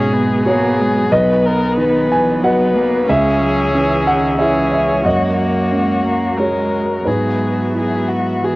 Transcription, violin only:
Already playing: G#4
0.46 G#4
1.12 B4
1.45 A#4
1.78 B4
2.44 B4
3.09 G#4
4.39 G#4
5.04 F#4
5.37 F#4
6.38 A#4
7.07 G#4
7.76 G#4
8.09 F#4
8.44 G#4

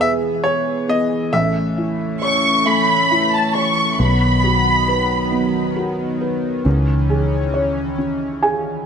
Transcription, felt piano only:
Already playing: E3 B3 G#4
0.00 B4
0.44 G#4
0.88 B3
1.33 A3
1.77 E4
2.22 C#5
2.66 A3
3.11 E4
3.55 C#5
3.99 B3
4.44 F#4
4.88 B4
5.32 B3
5.76 F#4
6.21 B4
6.65 C#4
7.10 G#4
7.54 C#5
7.98 C#4
8.42 G#4 G#5

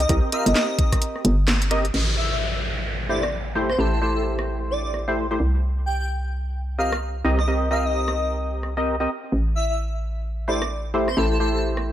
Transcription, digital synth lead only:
0.00 D#5
0.32 F5
0.46 D#5
2.17 E5
2.31 E5
3.09 D5
3.69 C5
3.79 A4
3.92 A4
4.02 A4
4.15 A4
4.71 D5
4.85 D5
5.86 G5
6.00 G5
6.79 F5
7.38 D#5
7.71 F5
7.85 D#5
9.56 E5
9.70 E5
10.48 D5
11.08 C5
11.17 A4
11.31 A4
11.40 A4
11.54 A4

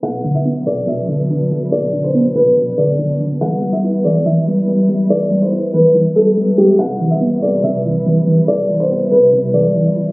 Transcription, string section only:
0.03 F#3 B3 D4 B4
3.41 G3 E4 B4
6.79 C3 E4 B4

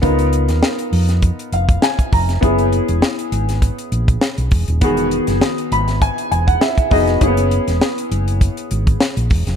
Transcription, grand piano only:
0.02 B3 D#4 F4 A#4
1.53 F5
1.83 G#5
2.13 A#5
2.41 B3 C#4 E4 G#4
4.81 D#3 B3 F#4 G#4
5.72 B5
6.02 G#5
6.31 G#5
6.47 F#5
6.61 E5
6.91 B3 D#4 F#4 G#4 D#5
7.21 A#3 C#4 E4 G#4
7.27 B3

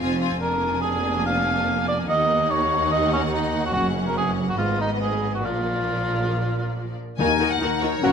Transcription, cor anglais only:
0.42 A#4
0.82 G#4
1.26 F5
1.88 D5
2.09 D#5
2.51 C#5
2.92 D#5
3.13 C#4
3.33 D#4
3.65 F#4
3.73 F#4
4.07 A#4
4.17 G#4
4.49 F#4
4.58 F4
4.81 D#4
5.01 G#4
5.35 F#4
5.45 F4
7.20 A#4
8.04 A#4

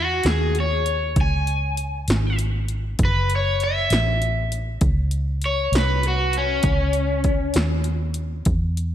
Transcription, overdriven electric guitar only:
Already playing: F#4
0.28 G#4
0.60 C#5
1.21 G#5
3.05 B4
3.36 C#5
3.64 E5
4.86 C#5
5.46 C#5
5.77 B4
6.08 F#4
6.38 C#4

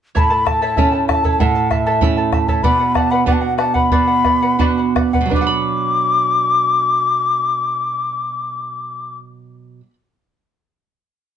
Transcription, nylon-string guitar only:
0.15 A2
0.78 A3 C#4 E4
1.40 A2
2.01 A3 C#4 E4
2.64 B2
3.26 B3 D4 F#4
3.92 B2
4.59 B3 D4 F#4
5.21 B2
5.26 F#3
5.31 D4
5.36 B4
5.41 F#5
5.47 B5

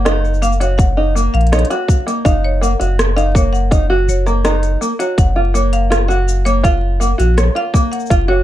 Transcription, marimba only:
0.42 F5
0.61 C#5
0.78 F#5
1.34 F5
1.53 C#5
1.71 F#5
2.25 F5
2.45 C#5
2.63 F#5
3.17 F5
3.36 C#5
3.53 F#5
4.09 C#5
4.27 A#5
4.46 A#5
5.00 C#5
5.18 F#5
5.55 C#5
5.73 F5
6.08 F#5
6.45 C#5
6.64 F5
7.01 F#5
7.37 C#5
7.56 F5
7.92 F#5
8.28 C#5

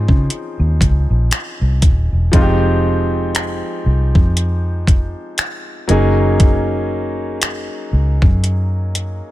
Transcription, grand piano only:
Already playing: F3 C4 C#4 D#4 G#4
2.32 F3 G#3 C4 D#4 F4
2.42 G4
5.87 F#3 A#3 C#4 D#4 G#4

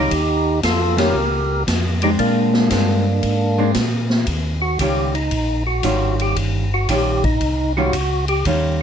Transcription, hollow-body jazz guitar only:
0.97 D#3 G3 C#4 F4
2.03 G#3 C4 D4
2.71 G#3 C4 D4
3.58 G#3 C4 D4
4.81 D#3 G3 C#4 F4
5.83 D#3 G3 C#4 F4
6.89 D#3 G3 C#4 F4
7.77 D#3 G3 C#4 F4
8.46 D#3 G3 C#4 F4

